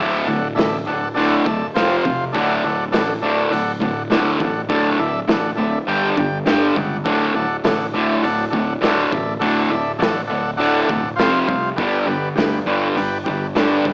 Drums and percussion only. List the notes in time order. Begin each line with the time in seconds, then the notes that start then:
0.58 snare, open hi-hat
1.18 open hi-hat
1.46 kick
1.75 snare, open hi-hat
2.05 kick
2.35 kick, open hi-hat
2.93 snare, open hi-hat
3.52 open hi-hat
3.82 kick
4.11 snare, open hi-hat
4.40 kick
4.70 kick, open hi-hat
5.28 snare, open hi-hat
5.89 open hi-hat
6.17 kick
6.46 snare, open hi-hat
6.76 kick
7.05 kick, open hi-hat
7.64 snare, open hi-hat
8.24 open hi-hat
8.53 kick
8.83 snare, open hi-hat
9.12 kick
9.42 kick, open hi-hat
10.01 snare, open hi-hat
10.60 open hi-hat
10.89 kick
11.18 snare, open hi-hat
11.49 kick
11.78 kick, open hi-hat
12.37 snare, open hi-hat
12.97 open hi-hat
13.26 kick
13.56 snare, open hi-hat
13.85 kick